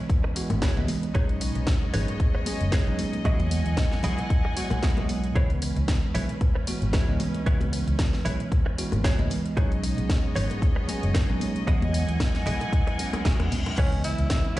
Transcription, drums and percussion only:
0.10 kick, closed hi-hat
0.36 open hi-hat
0.50 closed hi-hat, high bongo, high conga
0.62 kick, snare, closed hi-hat
0.77 high conga
0.88 open hi-hat, high conga
1.03 closed hi-hat
1.15 kick, closed hi-hat
1.29 closed hi-hat
1.41 open hi-hat
1.55 closed hi-hat
1.67 kick, snare, closed hi-hat
1.94 open hi-hat, low conga
2.08 closed hi-hat, high bongo
2.20 kick, closed hi-hat
2.46 open hi-hat, high conga
2.61 closed hi-hat
2.72 kick, snare, closed hi-hat
2.99 open hi-hat, high conga
3.13 closed hi-hat, high conga
3.25 kick, closed hi-hat
3.40 closed hi-hat, high conga
3.51 open hi-hat
3.66 closed hi-hat
3.77 kick, snare, closed hi-hat
3.92 snare
4.03 open hi-hat, low conga
4.18 closed hi-hat, high bongo
4.30 kick, closed hi-hat
4.57 open hi-hat
4.70 closed hi-hat, high bongo, high conga
4.83 kick, snare, closed hi-hat
4.97 high bongo, high conga
5.09 open hi-hat, high conga
5.24 closed hi-hat
5.36 kick, closed hi-hat
5.50 closed hi-hat
5.62 open hi-hat
5.76 closed hi-hat
5.88 kick, snare, closed hi-hat
6.15 open hi-hat, low conga
6.29 closed hi-hat, high bongo
6.41 kick, closed hi-hat
6.67 open hi-hat, high conga
6.82 closed hi-hat
6.93 kick, snare, closed hi-hat
7.20 open hi-hat, high conga
7.34 closed hi-hat, high conga
7.46 kick, closed hi-hat
7.61 closed hi-hat, high conga
7.73 open hi-hat
7.88 closed hi-hat
7.99 kick, snare, closed hi-hat
8.13 snare
8.25 open hi-hat, low conga
8.40 closed hi-hat
8.52 kick, closed hi-hat
8.78 open hi-hat
8.92 closed hi-hat, high bongo, high conga
9.04 kick, snare, closed hi-hat
9.19 high conga
9.30 open hi-hat, high conga
9.46 closed hi-hat
9.57 kick, closed hi-hat
9.72 closed hi-hat
9.84 open hi-hat
9.98 closed hi-hat
10.10 kick, snare, closed hi-hat
10.35 open hi-hat, low conga
10.50 closed hi-hat, high bongo
10.62 kick, closed hi-hat
10.88 open hi-hat, high conga
11.03 closed hi-hat
11.15 kick, snare, closed hi-hat
11.41 open hi-hat, high conga
11.55 closed hi-hat, high conga
11.67 kick, closed hi-hat
11.82 closed hi-hat, high conga
11.94 open hi-hat
12.09 closed hi-hat
12.20 kick, snare, closed hi-hat
12.34 snare, closed hi-hat
12.46 open hi-hat, low conga
12.61 closed hi-hat, high bongo
12.73 kick, closed hi-hat
12.87 closed hi-hat
12.99 open hi-hat
13.13 closed hi-hat, high bongo, high conga
13.25 kick, snare, closed hi-hat
13.39 closed hi-hat, high bongo, high conga
13.52 open hi-hat, high conga
13.66 closed hi-hat, high bongo
13.78 kick, closed hi-hat, crash
13.92 closed hi-hat
14.04 open hi-hat
14.18 closed hi-hat
14.30 kick, snare, closed hi-hat

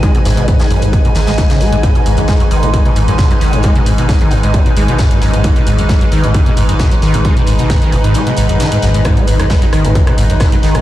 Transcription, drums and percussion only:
0.03 kick, closed hi-hat
0.15 closed hi-hat
0.25 snare, closed hi-hat, open hi-hat
0.37 closed hi-hat
0.48 kick, closed hi-hat
0.59 snare, closed hi-hat
0.71 open hi-hat
0.82 closed hi-hat
0.93 kick, closed hi-hat
1.05 closed hi-hat
1.15 snare, closed hi-hat, open hi-hat
1.27 snare, closed hi-hat
1.38 kick, snare, closed hi-hat
1.50 snare, closed hi-hat
1.61 snare, closed hi-hat, open hi-hat
1.73 closed hi-hat
1.83 kick, closed hi-hat
1.95 closed hi-hat
2.06 closed hi-hat, open hi-hat
2.17 closed hi-hat
2.28 kick, snare, closed hi-hat
2.40 closed hi-hat
2.51 closed hi-hat, open hi-hat
2.63 closed hi-hat
2.74 kick, closed hi-hat
2.85 closed hi-hat
2.96 closed hi-hat, open hi-hat
3.08 closed hi-hat
3.18 kick, snare, closed hi-hat
3.31 closed hi-hat
3.41 snare, closed hi-hat, open hi-hat
3.53 closed hi-hat
3.63 kick, closed hi-hat
3.76 closed hi-hat
3.86 closed hi-hat, open hi-hat
3.98 closed hi-hat
4.09 kick, snare, closed hi-hat
4.21 closed hi-hat
4.31 closed hi-hat, open hi-hat
4.43 closed hi-hat
4.54 kick, closed hi-hat
4.66 closed hi-hat
4.77 closed hi-hat, open hi-hat
4.88 closed hi-hat
4.98 kick, snare, closed hi-hat
5.11 closed hi-hat
5.21 snare, closed hi-hat, open hi-hat
5.34 closed hi-hat
5.44 kick, closed hi-hat
5.56 closed hi-hat
5.67 closed hi-hat, open hi-hat
5.78 closed hi-hat
5.89 kick, snare, closed hi-hat
6.01 closed hi-hat
6.12 closed hi-hat, open hi-hat
6.23 closed hi-hat
6.34 kick, closed hi-hat
6.46 closed hi-hat
6.57 closed hi-hat, open hi-hat
6.69 closed hi-hat
6.79 kick, snare, closed hi-hat
6.92 closed hi-hat
7.02 snare, closed hi-hat, open hi-hat
7.14 closed hi-hat
7.25 kick, closed hi-hat
7.37 closed hi-hat
7.47 closed hi-hat, open hi-hat
7.59 closed hi-hat
7.70 kick, snare, closed hi-hat
7.82 closed hi-hat
7.92 closed hi-hat, open hi-hat
8.04 closed hi-hat
8.14 closed hi-hat
8.27 closed hi-hat
8.37 closed hi-hat, open hi-hat
8.49 closed hi-hat
8.60 snare, closed hi-hat
8.72 closed hi-hat
8.82 snare, closed hi-hat, open hi-hat
8.94 closed hi-hat
9.05 kick, cross-stick, closed hi-hat
9.17 closed hi-hat
9.27 closed hi-hat, open hi-hat
9.40 cross-stick, closed hi-hat
9.50 kick, snare, closed hi-hat
9.62 closed hi-hat
9.73 cross-stick, closed hi-hat, open hi-hat
9.85 closed hi-hat
9.95 kick, closed hi-hat
10.07 cross-stick, closed hi-hat
10.18 closed hi-hat, open hi-hat
10.30 closed hi-hat
10.40 kick, cross-stick, snare, closed hi-hat
10.52 closed hi-hat
10.63 snare, closed hi-hat, open hi-hat
10.74 cross-stick, closed hi-hat

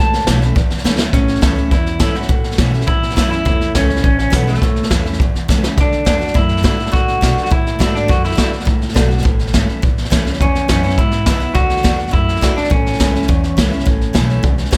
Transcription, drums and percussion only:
0.13 snare
0.20 snare
0.27 snare, hi-hat pedal
0.42 snare
0.56 kick, snare
0.70 snare
0.78 snare
0.85 snare, hi-hat pedal
0.99 snare
1.13 kick, snare
1.28 snare
1.35 snare
1.42 kick, snare, hi-hat pedal
1.57 snare
1.71 kick, snare
1.86 snare
2.00 kick, snare, hi-hat pedal
2.15 snare
2.22 snare
2.29 kick, snare
2.44 snare
2.51 snare
2.58 kick, snare, hi-hat pedal
2.74 snare
2.81 snare
2.88 kick, snare
3.03 snare
3.10 snare
3.17 kick, snare, hi-hat pedal
3.32 snare
3.46 kick, snare
3.61 snare
3.75 kick, snare, hi-hat pedal
3.90 snare
3.96 snare
4.04 kick, snare
4.19 snare
4.33 kick, snare, hi-hat pedal
4.48 snare
4.54 snare
4.61 kick, snare
4.76 snare
4.83 snare
4.91 kick, snare, hi-hat pedal
5.06 snare
5.13 snare
5.20 kick, snare
5.35 snare
5.49 kick, snare, hi-hat pedal
5.64 snare
5.77 kick, snare
5.92 snare
6.06 kick, snare, hi-hat pedal
6.21 snare
6.27 snare
6.35 kick, snare
6.49 snare
6.57 snare
6.64 kick, snare, hi-hat pedal
6.79 snare
6.86 snare
6.93 kick, snare
7.08 snare
7.22 kick, snare, hi-hat pedal
7.38 snare
7.46 snare
7.52 kick, snare
7.67 snare
7.80 kick, snare, hi-hat pedal
7.95 snare
8.09 kick, snare
8.24 snare
8.31 snare
8.38 kick, snare, hi-hat pedal
8.53 snare
8.60 snare
8.67 kick, snare
8.82 snare
8.89 snare
8.96 kick, snare, hi-hat pedal
9.11 snare
9.18 snare
9.25 kick, snare
9.39 snare
9.47 snare
9.54 kick, snare, hi-hat pedal
9.69 snare
9.83 kick, snare
9.98 snare
10.05 snare
10.12 kick, snare, hi-hat pedal
10.26 snare
10.33 snare
10.40 kick, snare
10.55 snare
10.69 kick, snare, hi-hat pedal
10.83 snare
10.90 snare
10.97 kick, snare
11.11 snare
11.26 kick, snare, hi-hat pedal
11.40 snare
11.54 kick, snare
11.70 snare
11.77 snare
11.84 kick, snare, hi-hat pedal
11.99 snare
12.07 snare
12.14 kick, snare
12.29 snare
12.36 snare
12.42 kick, snare, hi-hat pedal
12.57 snare
12.64 snare
12.71 kick, snare
12.86 snare
12.93 snare
13.00 kick, snare, hi-hat pedal
13.15 snare
13.22 snare
13.29 kick, snare
13.44 snare
13.58 kick, snare, hi-hat pedal
13.73 snare
13.80 snare
13.87 kick, snare
14.01 snare
14.15 kick, snare, hi-hat pedal
14.30 snare
14.43 kick, snare
14.58 snare
14.65 snare
14.73 kick, snare, hi-hat pedal

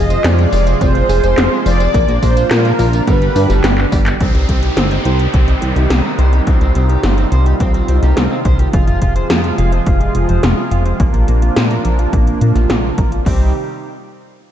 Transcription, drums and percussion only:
0.10 closed hi-hat, tambourine
0.24 snare, clap, closed hi-hat, tambourine
0.39 closed hi-hat
0.53 open hi-hat, tambourine
0.67 closed hi-hat, tambourine
0.81 kick, closed hi-hat, tambourine
0.95 closed hi-hat
1.09 open hi-hat, tambourine
1.23 closed hi-hat, tambourine
1.38 snare, clap, closed hi-hat, tambourine
1.66 open hi-hat, tambourine
1.80 closed hi-hat, tambourine
1.94 kick, closed hi-hat, tambourine
2.08 closed hi-hat
2.23 kick, open hi-hat, tambourine
2.37 closed hi-hat, tambourine
2.51 snare, clap, closed hi-hat, tambourine
2.65 closed hi-hat
2.79 open hi-hat, tambourine
2.93 closed hi-hat, tambourine
3.07 kick, closed hi-hat, tambourine
3.22 closed hi-hat
3.36 open hi-hat, tambourine
3.50 snare, closed hi-hat, tambourine
3.64 snare, clap, closed hi-hat, tambourine
3.78 clap
3.92 kick, open hi-hat, tambourine
4.06 clap, closed hi-hat, tambourine
4.20 kick, closed hi-hat
4.35 closed hi-hat
4.49 kick, closed hi-hat
4.63 closed hi-hat
4.77 snare, closed hi-hat
4.91 closed hi-hat
5.05 closed hi-hat
5.19 closed hi-hat
5.34 kick, closed hi-hat
5.48 closed hi-hat
5.62 closed hi-hat
5.76 closed hi-hat
5.90 snare, closed hi-hat
6.19 closed hi-hat
6.33 closed hi-hat
6.47 kick, closed hi-hat
6.61 closed hi-hat
6.75 closed hi-hat
6.89 closed hi-hat
7.03 snare, closed hi-hat
7.18 closed hi-hat
7.32 closed hi-hat
7.46 closed hi-hat
7.60 kick, closed hi-hat
7.74 closed hi-hat
7.88 closed hi-hat
8.03 snare, closed hi-hat
8.17 snare, closed hi-hat
8.45 kick, closed hi-hat
8.59 closed hi-hat
8.73 kick, closed hi-hat
8.88 closed hi-hat
9.02 kick, closed hi-hat
9.16 closed hi-hat
9.30 snare, closed hi-hat
9.44 closed hi-hat
9.58 closed hi-hat
9.72 closed hi-hat
9.86 kick, closed hi-hat
10.01 closed hi-hat
10.15 closed hi-hat
10.29 closed hi-hat
10.43 snare, closed hi-hat
10.71 closed hi-hat
10.86 closed hi-hat
11.00 kick, closed hi-hat
11.14 closed hi-hat
11.28 closed hi-hat
11.42 closed hi-hat
11.56 snare, closed hi-hat
11.71 closed hi-hat
11.85 closed hi-hat
11.99 closed hi-hat
12.13 kick, closed hi-hat
12.27 closed hi-hat
12.41 closed hi-hat
12.56 snare, closed hi-hat
12.70 snare, closed hi-hat
12.98 kick, closed hi-hat
13.12 closed hi-hat
13.26 kick, crash

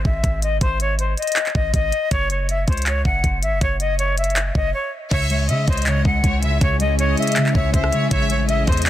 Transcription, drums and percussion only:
0.05 kick
0.24 kick, closed hi-hat
0.42 closed hi-hat
0.61 kick, closed hi-hat
0.80 closed hi-hat
0.99 closed hi-hat
1.18 closed hi-hat
1.22 closed hi-hat
1.27 closed hi-hat
1.32 closed hi-hat
1.36 clap, closed hi-hat
1.46 clap
1.55 kick
1.74 kick, closed hi-hat
1.92 closed hi-hat
2.11 kick, closed hi-hat
2.30 closed hi-hat
2.49 closed hi-hat
2.68 kick, closed hi-hat
2.73 closed hi-hat
2.77 closed hi-hat
2.82 closed hi-hat
2.86 clap, closed hi-hat
3.05 kick
3.24 kick, closed hi-hat
3.43 closed hi-hat
3.61 kick, closed hi-hat
3.80 closed hi-hat
3.99 closed hi-hat
4.17 closed hi-hat, open hi-hat
4.24 closed hi-hat
4.30 closed hi-hat
4.36 clap, closed hi-hat
4.55 kick
5.11 kick, closed hi-hat, crash
5.30 closed hi-hat
5.49 closed hi-hat
5.68 kick, closed hi-hat
5.73 closed hi-hat
5.77 closed hi-hat
5.82 closed hi-hat
5.86 clap, closed hi-hat
6.05 kick
6.24 kick, closed hi-hat
6.43 closed hi-hat
6.61 kick, closed hi-hat
6.80 closed hi-hat
6.99 closed hi-hat
7.17 closed hi-hat
7.22 closed hi-hat
7.27 closed hi-hat
7.32 closed hi-hat
7.36 clap, closed hi-hat
7.46 clap
7.55 kick
7.74 kick, closed hi-hat
7.84 cross-stick
7.92 closed hi-hat
8.11 kick, closed hi-hat
8.30 closed hi-hat
8.49 closed hi-hat
8.67 kick, closed hi-hat
8.72 closed hi-hat
8.77 closed hi-hat
8.82 closed hi-hat
8.86 clap, closed hi-hat

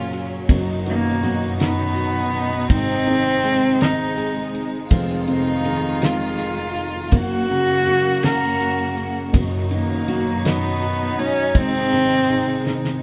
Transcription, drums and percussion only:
0.13 ride
0.49 kick, ride
0.86 ride
1.23 ride
1.60 snare, ride
1.98 ride
2.34 ride
2.70 kick, ride
3.06 ride
3.44 ride
3.81 snare, ride
4.18 ride
4.54 ride
4.91 kick, ride
5.27 ride
5.64 ride
6.02 snare, ride
6.39 ride
6.76 ride
7.12 kick, ride
7.48 ride
7.86 ride
8.23 snare, ride
8.60 ride
8.97 ride
9.34 kick, ride
9.71 ride
10.08 ride
10.45 snare, ride
10.82 ride
11.19 ride
11.55 kick, ride
11.91 ride
12.29 ride
12.67 snare
12.85 snare

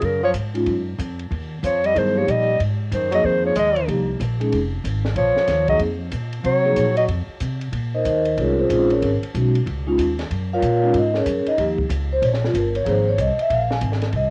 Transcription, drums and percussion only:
0.01 kick, ride
0.34 kick, hi-hat pedal, ride
0.55 ride
0.66 kick, ride
0.99 kick, hi-hat pedal, ride
1.19 ride
1.31 kick, ride
1.63 kick, hi-hat pedal, ride
1.84 ride
1.95 kick, ride
2.28 kick, hi-hat pedal, ride
2.60 kick, ride
2.92 kick, hi-hat pedal, ride
3.12 ride
3.24 kick
3.55 kick, hi-hat pedal, ride
3.76 ride
3.88 kick, ride
4.20 kick, hi-hat pedal, ride
4.41 ride
4.52 kick, ride
4.84 kick, hi-hat pedal, ride
5.05 snare
5.16 kick, ride
5.37 snare
5.48 kick, snare, hi-hat pedal, ride
5.68 kick, ride
5.80 kick, ride
6.12 kick, hi-hat pedal, ride
6.33 ride
6.45 kick, ride
6.76 kick, hi-hat pedal, ride
6.97 ride
7.09 kick, ride
7.40 kick, hi-hat pedal, ride
7.61 ride
7.73 kick, ride
8.05 kick, hi-hat pedal, ride
8.25 ride
8.38 kick, ride
8.70 kick, hi-hat pedal, ride
8.90 ride
9.02 kick, ride
9.23 ride
9.34 kick, hi-hat pedal, ride
9.55 ride
9.67 kick, ride
9.98 kick, hi-hat pedal, ride
10.19 snare, ride
10.30 kick, ride
10.62 kick, hi-hat pedal, ride
10.94 kick, ride
11.14 snare
11.26 kick, hi-hat pedal, ride
11.46 ride
11.58 kick, ride
11.78 kick
11.90 kick, hi-hat pedal, ride
12.22 kick, ride
12.34 snare
12.45 snare
12.55 kick, hi-hat pedal, ride
12.75 ride
12.86 kick, ride
13.18 kick, hi-hat pedal, ride
13.39 ride
13.50 kick, ride
13.71 snare
13.81 kick, hi-hat pedal, ride
13.92 snare
14.02 snare, ride
14.13 kick, ride

